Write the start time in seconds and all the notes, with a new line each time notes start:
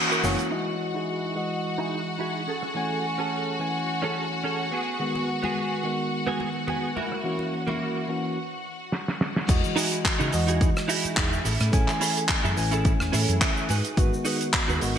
Already playing: E3 A#3 C#4 F#4 F#5
0.09 E4 F#4 A#4, shaker
0.23 F#1 E3 A#3 C#4 F#4, open hi-hat, high conga, low conga, shaker
0.38 muted clean electric guitar stroke, closed hi-hat, shaker
0.51 E3 G#3 D#4 E4 F#4 G#4 D#5 F#5
0.94 D#4 E4 F#4 G#4, shaker
1.09 shaker
1.35 E3 G#3 F#4 D#5
1.78 D#4 E4 F#4 G#4, cross-stick
1.92 open hi-hat
2.19 D#4 E4 F#4 G#4
2.47 C#4 G#4 A4, open hi-hat
2.62 cross-stick
2.75 E3 A3 C#4 G#5
3.04 open hi-hat
3.18 C#4 G#4 A4
3.59 E3 A3 C#4 G#5, open hi-hat
4.02 C#4 G#4 A4, cross-stick
4.16 open hi-hat
4.44 C#4 G#4 A4
4.71 B3 F#4 G#4, open hi-hat
4.99 D#3 G#3 B3 F#4
5.15 muted conga
5.28 open hi-hat
5.42 B3 F#4 G#4, high conga
5.83 D#3 G#3 B3 F#4, open hi-hat
6.26 B3 F#4 G#4, cross-stick, high conga
6.40 open hi-hat, muted conga
6.67 B3 F#4 G#4, low conga
6.95 A#3 E4 F#4, open hi-hat, high conga
7.12 cross-stick
7.23 E3 A#3 C#4 F#4
7.39 muted conga
7.52 open hi-hat
7.67 A#3 E4 F#4, high conga, low conga
8.08 E3 A#3 C#4 F#4, open hi-hat, shaker
8.92 snare
9.08 snare
9.21 snare
9.36 snare
9.48 E2 E3 G#3 F#4 D#5, kick, closed hi-hat, crash, shaker
9.64 shaker
9.76 D#4 E4 F#4 G#4, open hi-hat, shaker
9.92 closed hi-hat, shaker
10.05 kick, clap, closed hi-hat, shaker
10.19 C#3 D#4 E4 F#4 G#4, shaker
10.32 E2 E3 G#3 F#4 D#5, open hi-hat, shaker
10.47 D#4 E4 F#4 G#4, closed hi-hat, shaker
10.61 kick, closed hi-hat, shaker
10.77 cross-stick, shaker
10.88 D#4 E4 F#4 G#4, open hi-hat, shaker
11.05 muted fingered electric bass stroke, closed hi-hat, shaker
11.17 E1, kick, clap, closed hi-hat, shaker
11.33 shaker
11.44 A1 C#4 E4 G#4 A4, open hi-hat, shaker
11.60 A2, cross-stick, closed hi-hat, shaker
11.72 A1 E3 A3 C#4 G#5, kick, closed hi-hat, shaker
11.88 clap, shaker
12.00 C#4 E4 G#4 A4, open hi-hat, shaker
12.17 closed hi-hat, shaker
12.29 kick, clap, closed hi-hat, shaker
12.43 F#2 C#4 E4 G#4 A4, shaker
12.56 A1 E3 A3 C#4 G#5, open hi-hat, shaker
12.71 C#4 E4 G#4 A4, closed hi-hat, shaker
12.85 kick, closed hi-hat, shaker
13.00 E1, cross-stick, shaker
13.12 A2 C#4 E4 G#4 A4 C#5, open hi-hat, shaker
13.29 F#2, closed hi-hat, shaker
13.41 E5, kick, clap, closed hi-hat, shaker
13.57 shaker
13.68 G#2 D#4 F#4 G#4 B4 G#5, open hi-hat, shaker
13.85 closed hi-hat, shaker
13.97 G#1 D#3 G#3 B3 F#4, kick, closed hi-hat, shaker
14.13 shaker
14.25 D#4 F#4 G#4 B4, open hi-hat, shaker
14.41 closed hi-hat, shaker
14.53 kick, clap, closed hi-hat, shaker
14.68 D#2 D#4 F#4 G#4 B4, shaker
14.81 G#1 D#3 G#3 B3 F#4, open hi-hat, shaker